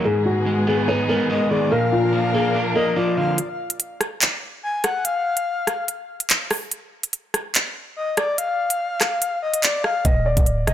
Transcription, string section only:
0.00 1.67 D#3 medium
0.05 1.70 G#2 medium
0.05 1.70 B3 medium
0.05 1.70 G#4 medium
1.72 3.37 A#2 medium
1.72 3.37 F3 medium
1.72 3.37 D4 medium
1.72 3.37 A#4 medium

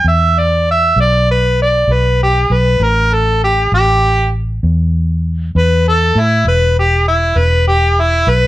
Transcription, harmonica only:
0.08 0.40 E5 medium
0.39 0.66 D5 medium
0.71 0.98 E5 medium
1.00 1.28 D5 medium
1.31 1.58 B4 medium
1.62 1.94 D5 medium
1.93 2.20 B4 medium
2.23 2.54 G4 medium
2.53 2.85 B4 medium
2.83 3.15 A#4 medium
3.13 3.41 A4 medium
3.44 3.72 G4 medium
3.74 4.32 G4 medium
5.58 5.85 B4 medium
5.88 6.21 A4 medium
6.20 6.47 E4 medium
6.48 6.76 B4 medium
6.79 7.07 G4 medium
7.08 7.40 E4 medium
7.39 7.67 B4 medium
7.68 8.02 G4 medium
8.00 8.31 E4 medium
8.30 8.47 B4 loud

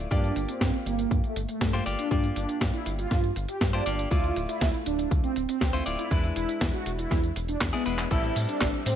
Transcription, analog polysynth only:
0.11 0.38 D4 loud
0.49 0.76 C4 medium
0.86 1.13 A#3 medium
1.24 1.42 A3 medium
1.49 1.85 A3 loud
1.99 2.26 D4 medium
2.36 2.63 D4 loud
2.74 2.92 E4 medium
2.99 3.35 F4 medium
3.49 3.67 G4 medium
3.74 4.01 D4 loud
4.11 4.38 F4 loud
4.49 4.76 E4 loud
4.86 5.13 D4 loud
5.24 5.42 C4 medium
5.49 5.85 C4 loud
5.98 6.26 E4 medium
6.36 6.63 E4 loud
6.73 6.92 F#4 medium
6.99 7.35 E4 medium
7.49 7.67 D4 medium
7.74 8.01 B3 loud
8.11 8.38 E4 loud
8.49 8.76 D4 medium
8.86 8.96 C4 medium

